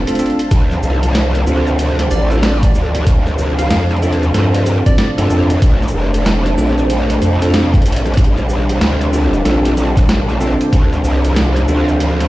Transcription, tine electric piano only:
0.07 C4 D4 F4 A4
0.19 C4 D4 F4 A4
1.47 C4 D4 F4 A4
2.31 C4 D4 F4 A4
4.02 C4 D4 F4 A4
4.34 C4 D4 F4 A4
4.86 C4 D4 F4 A4
5.18 C4 D4 F4 A4
5.30 C4 D4 F4 A4
6.58 C4 D4 F4 A4
7.42 C4 D4 F4 A4
9.13 C4 D4 F4 A4
9.45 C4 D4 F4 A4
10.41 C4 D4 F4 A4
11.68 C4 D4 F4 A4

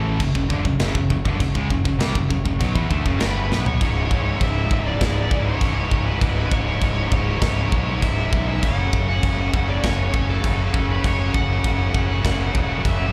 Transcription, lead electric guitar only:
3.20 B4
3.66 C#5
4.41 E5
4.86 D5
5.45 C#5
6.06 B4
6.52 C#5
7.12 C#5
8.04 E5
8.49 E5
8.62 F#5
9.08 F#5
9.68 D5
9.83 C#5
10.29 A4
10.91 B4
11.05 C#5
11.33 F#5
12.87 E5

